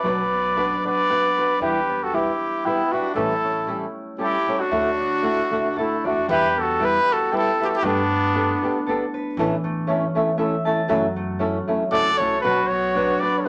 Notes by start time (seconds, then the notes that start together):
Already playing: A3 C#4 F#4 A4 B4 D5
0.03 B1 B2 F#3 B3 D4 F#4 B4
0.33 B3
0.57 B3 D4 F#4 B4
0.85 B3 D4 F#4 B4 D5
1.09 B3 D4 F#4 B4 F#5
1.38 B3 D4 F#4 B4 B5
1.60 E2 E3 G3 E4 G4 B4
1.89 B3
2.03 F#4 A4
2.13 G3 E4 G4 B4
2.65 G3 E4 G4 B4 G5
2.70 B3
2.92 G3 D4 E4 F#4 G4 B4 B5
3.14 A1 A2 E3 G3 A3 C#4 G4 A4
3.19 E4
3.44 C#4
3.67 G3 C#4 E4 G4 A4
4.18 G3 C#4 E4 G4 A4
4.47 G3 C#4 G4 A4 C#5
4.59 D4 F#4
4.71 D2 D3 A3 E4 F#4 A4
5.00 D4
5.22 A3 E4 F#4 A4
5.51 C#2 A3 E4 F#4 A4
5.77 D2 A3 E4 F#4 A4
6.04 E2 A3 D4 E4 F#4 A4 D5
6.28 E2 E3 G3 E4 G4 B4
6.56 B3 A4
6.61 F#4
6.80 G3 E4 G4 B4
6.85 G4 B4
7.12 F#4 A4
7.32 G3 E4 G4 B4 G5
7.37 A4
7.60 G3 E4 G4 B4 B5
7.64 F#4 G4 A4
7.74 E4 G4
7.83 G2 G3 A3 B3 D4 G4 A4
8.11 B3
8.35 B3 D4 G4 A4
8.62 B3 D4 G4 A4
8.86 B3 D4 G4 A4
9.14 B4
9.37 A2 E3 A3 C#4 E4 A4
9.64 A3
9.87 A3 C#4 E4 A4
10.15 A3 C#4 E4 A4
10.37 A3 C#4 E4 A4 E5
10.65 A3 C#4 E4 A4 A5
10.88 F#2 F#3 A3 C#4 E4 A4
11.16 A3
11.39 A3 C#4 E4 A4
11.68 A3 C#4 E4 A4
11.91 C#2 A3 C#4 E4 F#4 A4 D5
12.17 B1 A3 C#4 E4 A4 C#5
12.22 A4
12.41 B1 B2 F#3 B3 D4 F#4 B4
12.68 B3 C#5
12.72 F#4
12.94 B3 D4 F#4 B4
13.20 B3 D4 F#4 B4 D5
13.38 A4 C#5
13.45 B3 B4